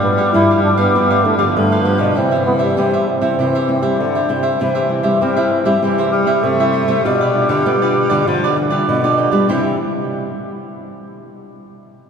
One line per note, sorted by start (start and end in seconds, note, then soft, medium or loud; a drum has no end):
0.00 0.25 G2 medium
0.00 0.30 G2 medium
0.00 0.21 F3 soft
0.00 1.58 G3 loud
0.00 0.31 B3 medium
0.00 0.21 B3 medium
0.00 0.21 D4 medium
0.00 0.18 G4 medium
0.00 0.17 B4 medium
0.00 0.17 F5 medium
0.18 0.33 G4 medium
0.18 0.33 B4 medium
0.18 0.32 F5 medium
0.33 0.73 G2 medium
0.33 0.92 D3 medium
0.33 0.73 F3 medium
0.33 0.73 B3 medium
0.33 0.73 D4 medium
0.33 0.48 D4 medium
0.33 0.62 E4 loud
0.33 0.49 G4 medium
0.33 0.49 B4 medium
0.33 0.49 F5 medium
0.51 0.78 G4 medium
0.51 0.77 B4 medium
0.51 0.76 F5 medium
0.63 0.70 D4 medium
0.77 0.92 G2 medium
0.77 1.26 B3 loud
0.77 0.93 G4 medium
0.77 0.93 B4 medium
0.77 0.93 F5 medium
0.95 1.53 G2 medium
0.95 1.34 G2 medium
0.95 1.13 F3 medium
0.95 1.13 B3 medium
0.95 1.09 D4 soft
0.95 1.13 D4 medium
0.95 1.09 G4 medium
0.95 1.09 B4 medium
0.95 1.09 F5 medium
1.10 1.24 G4 medium
1.10 1.24 B4 medium
1.10 1.24 F5 medium
1.24 1.35 F3 medium
1.24 1.37 A3 medium
1.24 1.35 B3 medium
1.24 1.36 D4 medium
1.24 muted cavaquinho stroke soft
1.38 1.53 D3 medium
1.38 1.80 F3 medium
1.38 1.45 G3 medium
1.38 1.81 B3 medium
1.38 1.81 D4 medium
1.38 1.69 G4 medium
1.38 1.69 B4 medium
1.38 1.69 F5 medium
1.55 1.95 G2 medium
1.55 2.14 D3 soft
1.55 2.18 F3 medium
1.55 1.86 A3 medium
1.72 1.84 G4 medium
1.72 1.84 B4 medium
1.72 1.85 F5 medium
1.84 2.14 F3 medium
1.84 2.02 B3 medium
1.84 2.15 B3 medium
1.84 2.00 D4 soft
1.84 2.15 D4 medium
1.84 1.98 G4 medium
1.84 1.98 B4 medium
1.84 1.97 F5 medium
1.98 2.14 B2 medium
1.98 2.20 D4 medium
1.98 2.15 G4 medium
1.98 2.14 B4 medium
1.98 2.14 F5 medium
2.15 2.75 C3 medium
2.15 2.69 C3 medium
2.15 3.12 E3 loud
2.15 2.35 G3 soft
2.15 2.35 C4 medium
2.15 2.45 C4 medium
2.15 2.30 E4 soft
2.15 2.35 E4 medium
2.15 2.30 G4 soft
2.15 2.31 C5 medium
2.15 2.30 E5 medium
2.31 2.60 G4 medium
2.31 2.58 C5 medium
2.31 2.58 E5 medium
2.46 2.72 G3 medium
2.46 2.53 B3 medium
2.46 2.72 C4 soft
2.46 2.73 E4 medium
2.59 3.10 G3 medium
2.59 2.76 G4 soft
2.59 2.75 C5 medium
2.59 2.75 E5 medium
2.77 3.36 G2 medium
2.77 3.17 C3 medium
2.77 3.07 G3 medium
2.77 3.07 C4 medium
2.77 2.91 E4 medium
2.77 3.07 E4 medium
2.77 2.92 G4 soft
2.77 2.92 C5 medium
2.77 2.92 E5 medium
2.93 3.22 G4 soft
2.93 3.21 C5 medium
2.93 3.20 E5 medium
3.08 4.30 C4 medium
3.21 3.35 C3 medium
3.21 3.33 G3 medium
3.21 3.33 C4 medium
3.21 3.33 E4 medium
3.21 3.37 G4 medium
3.21 3.37 C5 medium
3.21 3.37 E5 medium
3.38 3.78 C3 medium
3.38 3.97 C3 medium
3.38 4.02 E3 medium
3.38 3.57 G3 medium
3.38 3.57 C4 medium
3.38 3.53 E4 soft
3.38 3.57 E4 medium
3.38 3.53 G4 soft
3.38 3.54 C5 medium
3.38 3.54 E5 medium
3.55 3.68 G4 medium
3.55 3.68 C5 medium
3.55 3.69 E5 medium
3.68 3.79 G3 medium
3.68 3.79 C4 medium
3.68 3.79 E4 medium
3.68 muted cavaquinho stroke soft
3.82 4.24 G3 medium
3.82 3.96 G3 medium
3.82 4.24 C4 medium
3.82 4.25 E4 medium
3.82 4.14 G4 medium
3.82 4.13 C5 medium
3.82 4.13 E5 medium
3.99 4.57 G2 soft
3.99 4.32 D3 medium
3.99 4.28 D3 medium
4.15 4.28 G4 soft
4.15 4.29 C5 medium
4.15 4.29 E5 medium
4.29 4.57 C3 medium
4.29 4.61 C3 medium
4.29 4.58 G3 medium
4.29 4.58 C4 medium
4.29 4.44 E4 soft
4.29 4.58 E4 medium
4.29 4.43 G4 medium
4.29 4.42 C5 medium
4.29 4.42 E5 medium
4.43 4.59 G4 soft
4.43 4.59 C5 medium
4.43 4.58 E5 medium
4.59 5.19 C3 soft
4.59 5.00 C3 medium
4.59 5.23 E3 medium
4.59 4.79 G3 medium
4.59 4.79 C4 medium
4.59 4.74 E4 soft
4.59 4.79 E4 medium
4.59 4.75 G4 medium
4.59 4.74 C5 soft
4.59 4.74 E5 medium
4.75 5.03 G4 medium
4.75 5.02 C5 medium
4.75 5.02 E5 medium
4.89 5.19 G3 soft
4.89 5.19 C4 medium
4.89 5.20 E4 medium
5.03 5.18 G3 medium
5.03 5.20 G4 medium
5.03 5.19 C5 medium
5.03 5.19 E5 medium
5.21 5.80 G2 medium
5.21 5.53 G3 medium
5.21 5.61 C4 medium
5.21 5.36 E4 soft
5.21 5.36 G4 soft
5.21 5.36 C5 medium
5.21 5.35 E5 medium
5.36 5.63 G3 medium
5.36 5.63 C4 medium
5.36 5.63 E4 medium
5.36 5.65 G4 medium
5.36 5.65 C5 medium
5.36 5.64 E5 medium
5.51 5.82 E3 medium
5.65 5.77 G3 medium
5.65 5.80 G3 medium
5.65 5.77 C4 medium
5.65 5.77 E4 medium
5.65 5.81 G4 medium
5.65 5.81 C5 medium
5.65 5.81 E5 medium
5.82 6.41 C3 medium
5.82 6.11 E3 loud
5.82 6.23 G3 medium
5.82 6.35 G3 medium
5.82 6.24 C4 medium
5.82 6.24 E4 medium
5.82 5.97 E4 soft
5.82 5.97 G4 soft
5.82 5.98 C5 medium
5.82 5.97 E5 medium
5.98 6.12 G4 medium
5.98 6.12 C5 medium
5.98 6.12 E5 medium
6.12 6.46 G3 loud
6.12 muted cavaquinho stroke soft
6.26 6.53 G3 medium
6.26 6.53 C4 medium
6.26 6.53 E4 medium
6.26 6.58 G4 medium
6.26 6.57 C5 medium
6.26 6.57 E5 medium
6.43 7.01 G2 medium
6.43 6.83 C3 medium
6.43 7.06 A3 loud
6.58 7.00 G3 medium
6.58 7.00 C4 medium
6.58 7.00 E4 medium
6.58 6.72 G4 medium
6.58 6.72 C5 medium
6.58 6.73 E5 medium
6.73 6.88 E4 medium
6.73 6.88 G4 medium
6.73 6.87 C5 medium
6.73 6.87 E5 medium
6.88 7.02 C3 medium
6.88 7.03 G4 medium
6.88 7.03 C5 medium
6.88 7.03 E5 medium
7.04 7.62 B2 medium
7.04 7.44 B2 loud
7.04 7.23 G3 medium
7.04 8.28 G3 loud
7.04 7.23 D4 soft
7.04 7.23 F4 medium
7.04 7.19 F4 medium
7.04 7.19 G4 soft
7.04 7.20 B4 medium
7.04 7.20 D5 medium
7.21 7.49 G4 medium
7.21 7.48 B4 medium
7.21 7.48 D5 medium
7.34 7.75 G3 medium
7.34 7.76 D4 soft
7.34 7.76 F4 medium
7.49 7.63 D3 medium
7.49 7.65 G4 medium
7.49 7.64 B4 medium
7.49 7.64 D5 medium
7.65 8.24 B2 medium
7.65 8.05 B3 loud
7.65 7.80 F4 medium
7.65 7.80 G4 medium
7.65 7.80 B4 medium
7.65 7.80 D5 medium
7.82 8.08 G3 medium
7.82 8.08 D4 medium
7.82 8.08 F4 medium
7.82 8.10 G4 medium
7.82 8.10 B4 medium
7.82 8.08 D5 medium
8.10 8.24 D3 medium
8.10 8.22 G3 medium
8.10 8.22 D4 medium
8.10 8.22 F4 medium
8.10 8.25 G4 medium
8.10 8.25 B4 medium
8.10 8.25 D5 medium
8.27 8.85 B2 medium
8.27 8.79 D3 medium
8.27 8.53 F3 loud
8.27 8.68 G3 medium
8.27 8.69 D4 medium
8.27 8.41 F4 medium
8.27 8.69 F4 medium
8.27 8.41 G4 medium
8.27 8.42 B4 medium
8.27 8.42 D5 medium
8.44 8.56 G4 medium
8.44 8.56 B4 medium
8.44 8.56 D5 medium
8.52 8.58 D#3 medium
8.57 8.88 E3 medium
8.57 muted cavaquinho stroke soft
8.70 8.97 G3 medium
8.70 8.98 D4 medium
8.70 8.98 F4 medium
8.70 9.02 G4 medium
8.70 9.02 B4 medium
8.70 9.01 D5 medium
8.88 9.46 B2 medium
8.88 9.27 B2 loud
8.88 9.45 D3 medium
9.04 9.45 G3 medium
9.04 9.45 D4 medium
9.04 9.45 F4 medium
9.04 9.17 G4 medium
9.04 9.17 B4 medium
9.04 9.18 D5 medium
9.17 9.32 F4 medium
9.17 9.32 G4 medium
9.17 9.31 B4 medium
9.17 9.30 D5 medium
9.31 9.46 G3 medium
9.31 9.47 G4 medium
9.31 9.47 B4 medium
9.31 9.47 D5 medium
9.48 10.30 C3 medium
9.48 9.78 C3 medium
9.48 9.78 E3 medium
9.48 10.30 G3 medium
9.48 10.30 C4 medium
9.48 9.73 E4 medium
9.48 10.30 E4 medium
9.48 9.74 G4 medium
9.48 9.74 C5 medium
9.48 9.74 E5 medium